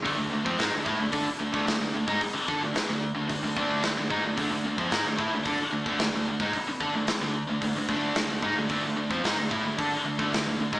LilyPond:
<<
  \new Staff \with { instrumentName = "Distorted electric guitar" } { \time 4/4 \key d \minor \tempo 4 = 111 <d a>16 <d a>16 <d a>16 <f c'>16 <gis ees'>16 <d a>16 <a e'>16 <d a>16 <d' a'>16 r16 <d a>16 <d a>16 <d a>16 <d a>16 <d a>16 <gis ees'>16 | r8 <d' a'>16 <d a>16 r16 <d a>8 <d a>16 <d a>16 <d a>16 <d a d'>8 <d a>16 <d a>16 <gis ees'>16 <d a>16 | <d a>16 <d a>16 <d a>16 <f c'>16 <gis ees'>16 <d a>16 <a e'>16 <d a>16 <d' a'>16 r16 <d a>16 <d a>16 <d a>16 <d a>16 <d a>16 <gis ees'>16 | r8 <d' a'>16 <d a>16 r16 <d a>8 <d a>16 <d a>16 <d a>16 <d a d'>8 <d a>16 <d a>16 <gis ees'>16 <d a>16 |
<d a>16 <d a>16 <d a>16 <f c'>16 <gis ees'>16 <d a>16 <a e'>16 <d a>16 <d' a'>16 r16 <d a>16 <d a>16 <d a>16 <d a>16 <d a>16 <gis ees'>16 | }
  \new Staff \with { instrumentName = "Overdriven electric guitar" } { \time 4/4 \key d \minor <d a>16 <d a>16 <d a>16 <f c'>16 <gis ees'>16 <d a>16 <a e'>16 <d a>16 <d' a'>16 r16 <d a>16 <d a>16 <d a>16 <d a>16 <d a>16 <gis ees'>16 | r8 <d' a'>16 <d a>16 r16 <d a>8 <d a>16 <d a>16 <d a>16 <d a d'>8 <d a>16 <d a>16 <gis ees'>16 <d a>16 | <d a>16 <d a>16 <d a>16 <f c'>16 <gis ees'>16 <d a>16 <a e'>16 <d a>16 <d' a'>16 r16 <d a>16 <d a>16 <d a>16 <d a>16 <d a>16 <gis ees'>16 | r8 <d' a'>16 <d a>16 r16 <d a>8 <d a>16 <d a>16 <d a>16 <d a d'>8 <d a>16 <d a>16 <gis ees'>16 <d a>16 |
<d a>16 <d a>16 <d a>16 <f c'>16 <gis ees'>16 <d a>16 <a e'>16 <d a>16 <d' a'>16 r16 <d a>16 <d a>16 <d a>16 <d a>16 <d a>16 <gis ees'>16 | }
  \new Staff \with { instrumentName = "Picked electric bass" } { \clef bass \time 4/4 \key d \minor d,16 d,16 d,16 f,16 gis,16 d,16 a,16 d,16 d16 r16 d,16 d,16 d,16 d,16 d,16 gis,16 | r8 d16 d,16 r16 d,8 d,16 d,16 d,16 d,8 d,16 d,16 gis,16 d,16 | d,16 d,16 d,16 f,16 gis,16 d,16 a,16 d,16 d16 r16 d,16 d,16 d,16 d,16 d,16 gis,16 | r8 d16 d,16 r16 d,8 d,16 d,16 d,16 d,8 d,16 d,16 gis,16 d,16 |
d,16 d,16 d,16 f,16 gis,16 d,16 a,16 d,16 d16 r16 d,16 d,16 d,16 d,16 d,16 gis,16 | }
  \new DrumStaff \with { instrumentName = "Drums" } \drummode { \time 4/4 <hho bd>8. bd16 <hho sn>8 bd8 <hho bd>8. bd16 <hho sn>8. bd16 | <hho bd>8 bd8 <hho sn>4 <hho bd>8 bd8 <hho sn>8 bd8 | <hho bd>8. bd16 <hho sn>8 bd8 <hho bd>8. bd16 <hho sn>8. bd16 | <hho bd>8 bd8 <hho sn>4 <hho bd>8 bd8 <hho sn>8 bd8 |
<hho bd>8. bd16 <hho sn>8 bd8 <hho bd>8. bd16 <hho sn>8. bd16 | }
>>